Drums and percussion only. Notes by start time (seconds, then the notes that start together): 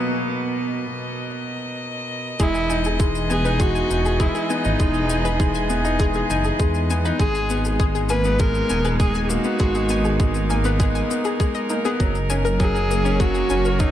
2.39 kick, shaker
2.55 shaker
2.70 shaker
2.84 shaker
3.00 kick, shaker
3.15 shaker
3.30 shaker
3.45 shaker
3.60 kick, shaker
3.75 shaker
3.90 shaker
4.05 shaker
4.20 kick, shaker
4.35 shaker
4.50 shaker
4.64 shaker
4.80 kick, shaker
4.94 shaker
5.09 shaker
5.25 shaker
5.40 kick, shaker
5.54 shaker
5.70 shaker
5.85 shaker
5.99 kick, shaker
6.14 shaker
6.30 shaker
6.44 shaker
6.59 kick, shaker
6.74 shaker
6.90 shaker
7.05 shaker
7.20 kick, shaker
7.35 shaker
7.50 shaker
7.65 shaker
7.80 kick, shaker
7.95 shaker
8.09 shaker
8.24 shaker
8.39 kick, shaker
8.55 shaker
8.69 shaker
8.85 shaker
9.00 kick, shaker
9.14 shaker
9.30 shaker
9.44 shaker
9.59 kick, shaker
9.75 shaker
9.89 shaker
10.05 shaker
10.20 kick, shaker
10.34 shaker
10.50 shaker
10.64 shaker
10.80 kick, shaker
10.95 shaker
11.11 shaker
11.25 shaker
11.40 kick, shaker
11.55 shaker
11.69 shaker
11.85 shaker
12.00 kick, shaker
12.15 shaker
12.30 shaker
12.45 shaker
12.60 kick, shaker
12.76 shaker
12.91 shaker
13.05 shaker
13.20 kick, shaker
13.35 shaker
13.50 shaker
13.65 shaker
13.80 kick, shaker